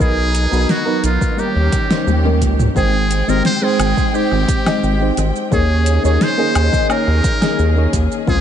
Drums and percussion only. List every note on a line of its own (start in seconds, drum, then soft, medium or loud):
0.00 kick loud
0.00 shaker soft
0.35 closed hi-hat medium
0.35 shaker medium
0.53 shaker soft
0.69 snare medium
0.69 shaker soft
1.04 closed hi-hat medium
1.04 shaker medium
1.21 kick loud
1.21 shaker soft
1.39 shaker soft
1.72 kick loud
1.72 closed hi-hat medium
1.72 shaker medium
1.91 snare medium
1.91 shaker soft
2.07 high tom medium
2.07 shaker soft
2.25 high tom medium
2.41 kick medium
2.41 closed hi-hat medium
2.41 shaker medium
2.59 mid tom medium
2.59 shaker soft
2.76 kick loud
2.76 shaker soft
3.11 closed hi-hat loud
3.11 shaker medium
3.29 shaker soft
3.45 snare medium
3.45 shaker soft
3.80 closed hi-hat medium
3.80 low woodblock medium
3.80 shaker medium
3.97 kick loud
3.97 shaker soft
4.15 shaker soft
4.48 kick loud
4.48 closed hi-hat medium
4.48 shaker medium
4.66 snare medium
4.66 low woodblock medium
4.66 shaker soft
4.84 shaker soft
5.17 closed hi-hat medium
5.17 shaker medium
5.36 shaker soft
5.52 kick loud
5.52 shaker soft
5.86 closed hi-hat loud
5.86 shaker medium
6.05 shaker soft
6.21 snare medium
6.21 shaker soft
6.55 closed hi-hat medium
6.55 low woodblock medium
6.55 shaker medium
6.73 kick loud
6.73 shaker soft
6.90 low woodblock medium
6.90 shaker soft
7.24 kick loud
7.24 closed hi-hat medium
7.24 shaker medium
7.42 snare medium
7.42 shaker soft
7.59 shaker soft
7.93 kick medium
7.93 closed hi-hat medium
7.93 shaker medium
8.12 shaker soft
8.27 kick loud
8.27 shaker soft